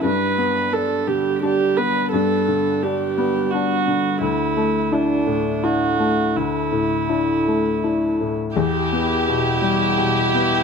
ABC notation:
X:1
M:3/4
L:1/8
Q:1/4=84
K:Em
V:1 name="Viola"
B2 A G G B | A2 G2 F2 | E2 D2 F2 | E4- E z |
E6 |]
V:2 name="Violin section"
z6 | z6 | z6 | z6 |
G6 |]
V:3 name="Upright piano"
G,, B, D D, D B, | G,, D, D B, D D, | D,, A, [DE] A,, [DE] A, | D,, A,, [DE] A, [DE] A,, |
E,, B, B,, G, B,, B, |]